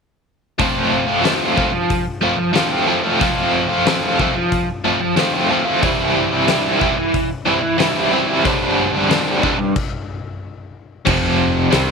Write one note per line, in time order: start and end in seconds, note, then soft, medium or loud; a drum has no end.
0.58 1.22 F3 medium
0.58 1.09 A3 medium
0.58 1.08 C4 medium
0.58 1.06 F4 medium
0.58 kick medium
0.58 open hi-hat soft
1.07 1.23 A3 soft
1.07 1.24 C4 medium
1.07 1.25 F4 medium
1.23 1.55 F3 medium
1.23 1.56 A3 medium
1.23 1.57 C4 medium
1.23 1.58 F4 medium
1.23 snare medium
1.23 open hi-hat soft
1.55 2.05 F3 medium
1.55 1.72 A3 medium
1.55 1.73 C4 medium
1.55 1.71 F4 medium
1.55 kick medium
1.73 muted overdriven electric guitar stroke soft
1.90 kick medium
1.90 open hi-hat soft
2.21 2.52 F3 medium
2.21 2.38 A3 medium
2.21 2.38 C4 medium
2.21 2.37 F4 medium
2.38 muted overdriven electric guitar stroke soft
2.53 2.85 F3 medium
2.53 2.72 A3 medium
2.53 2.71 C4 medium
2.53 2.69 F4 medium
2.53 snare medium
2.53 open hi-hat soft
2.70 2.86 A3 soft
2.70 2.88 C4 medium
2.70 2.87 F4 medium
2.86 3.18 F3 medium
2.86 3.04 A3 medium
2.86 3.04 C4 medium
2.86 3.02 F4 medium
3.03 3.19 A3 soft
3.03 3.21 C4 soft
3.03 3.21 F4 medium
3.20 3.84 F3 medium
3.20 3.71 A3 medium
3.20 3.70 C4 medium
3.20 3.67 F4 medium
3.20 kick medium
3.20 open hi-hat soft
3.69 3.86 A3 soft
3.69 3.87 C4 medium
3.69 3.87 F4 medium
3.86 4.18 F3 medium
3.86 4.19 A3 medium
3.86 4.20 C4 medium
3.86 4.20 F4 medium
3.86 snare medium
3.86 open hi-hat soft
4.19 4.68 F3 medium
4.19 4.35 A3 medium
4.19 4.35 C4 medium
4.19 4.35 F4 medium
4.19 kick medium
4.36 muted overdriven electric guitar stroke soft
4.52 kick medium
4.52 open hi-hat soft
4.84 5.15 F3 medium
4.84 5.00 A3 medium
4.84 5.00 C4 medium
4.84 4.99 F4 medium
5.00 muted overdriven electric guitar stroke soft
5.16 5.48 F3 medium
5.16 5.35 A3 medium
5.16 5.34 C4 medium
5.16 5.32 F4 medium
5.16 snare medium
5.16 open hi-hat soft
5.33 5.49 A3 medium
5.33 5.51 C4 medium
5.33 5.51 F4 medium
5.49 5.81 F3 medium
5.49 5.67 A3 medium
5.49 5.66 C4 medium
5.49 5.64 F4 medium
5.65 5.82 A3 soft
5.65 5.84 C4 medium
5.65 5.80 F4 medium
5.82 6.46 E3 medium
5.82 6.33 G3 medium
5.82 6.32 C4 medium
5.82 6.30 E4 medium
5.82 kick medium
5.82 open hi-hat soft
6.31 6.48 G3 soft
6.31 6.49 C4 medium
6.31 6.49 E4 medium
6.47 6.78 E3 medium
6.47 6.80 G3 medium
6.47 6.81 C4 medium
6.47 6.81 E4 medium
6.47 snare medium
6.47 open hi-hat soft
6.79 7.29 E3 medium
6.79 6.97 G3 medium
6.79 6.96 C4 medium
6.79 6.96 E4 medium
6.79 kick medium
6.97 muted overdriven electric guitar stroke soft
7.14 kick medium
7.14 open hi-hat soft
7.45 7.77 E3 medium
7.45 7.62 G3 medium
7.45 7.62 C4 medium
7.45 7.61 E4 medium
7.62 muted overdriven electric guitar stroke soft
7.78 8.10 E3 medium
7.78 7.97 G3 medium
7.78 7.96 C4 medium
7.78 7.94 E4 medium
7.78 snare medium
7.78 open hi-hat soft
7.96 8.11 G3 medium
7.96 8.12 C4 medium
7.96 8.13 E4 medium
8.11 8.43 E3 medium
8.11 8.29 G3 medium
8.11 8.28 C4 medium
8.11 8.26 E4 medium
8.27 8.44 G3 soft
8.27 8.43 C4 medium
8.27 8.42 E4 medium
8.44 9.08 G2 medium
8.44 9.08 D3 medium
8.44 8.94 G3 medium
8.44 8.93 C4 medium
8.44 8.92 D4 medium
8.44 kick medium
8.44 open hi-hat soft
8.93 9.09 G3 soft
8.93 9.10 C4 medium
8.93 9.10 D4 medium
9.09 9.73 G2 medium
9.09 9.40 D3 medium
9.09 9.42 G3 medium
9.09 9.42 C4 medium
9.09 9.43 D4 medium
9.09 snare medium
9.09 open hi-hat soft
9.41 9.58 D3 medium
9.41 9.58 G3 medium
9.41 9.57 C4 medium
9.41 9.57 D4 medium
9.41 kick medium
9.59 muted overdriven electric guitar stroke soft
9.76 kick medium
9.76 crash medium
11.05 11.68 F1 medium
11.05 11.70 F2 medium
11.05 11.69 C3 loud
11.05 11.70 F3 medium
11.05 kick loud
11.05 crash medium
11.70 11.91 C2 medium
11.70 11.91 C3 medium
11.70 11.91 G3 medium
11.70 11.91 C4 medium
11.70 snare loud
11.70 open hi-hat soft